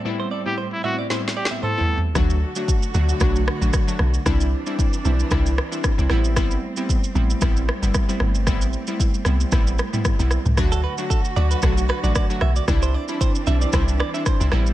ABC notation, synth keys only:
X:1
M:4/4
L:1/16
Q:"Swing 16ths" 1/4=114
K:Dmix
V:1 name="Synth keys"
[A,,G,B,CE]2 z [A,,G,B,CE] z2 [A,,G,B,CE]2 [A,,G,B,CE]2 z [A,,G,B,CE] z [A,,G,B,CE] z2 | [F,A,DF]2 z [F,A,DF] z2 [F,A,DF]2 [F,A,DF]2 z [F,A,DF] z [F,A,DF] z2 | [G,CDE]2 z [G,CDE] z2 [G,CDE]2 [G,CDE]2 z [G,CDE] z [G,CDE] [G,B,CE]2 | [G,B,CE]2 z [G,B,CE] z2 [G,B,CE]2 [G,B,CE]2 z [G,B,CE] z [G,B,CE] z2 |
[G,B,CE]2 z [G,B,CE] z2 [G,B,CE]2 [G,B,CE]2 z [G,B,CE] z [G,B,CE] z2 | [F,A,DF]2 z [F,A,DF] z2 [F,A,DF]2 [F,A,DF]2 z [F,A,DF] z [F,A,DF] z2 | [G,CDE]2 z [G,CDE] z2 [G,CDE]2 [G,CDE]2 z [G,CDE] z [G,CDE] [G,B,CE]2 |]